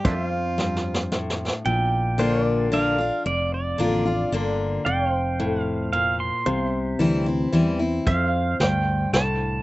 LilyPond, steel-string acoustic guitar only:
\new Staff \with { instrumentName = "Steel-string acoustic guitar" } { \time 3/4 \key f \major \tempo 4 = 112 << { r2. | r4 <d bes d' f'>4 <d bes d' f'>8 <d' f'>8 | r4 <d bes d' f'>8 <d' f'>8 <d bes d' f'>4 | r2. |
r4 <e g c' e'>8 <c' e'>8 <e g c' e'>8 <c' e'>8 | r2. | } \\ { f,4 g,4 a,4 | bes,2 r4 | f,2 r4 | f,4 a,4 bes,4 |
c2 r4 | f,4 g,4 a,4 | } >> }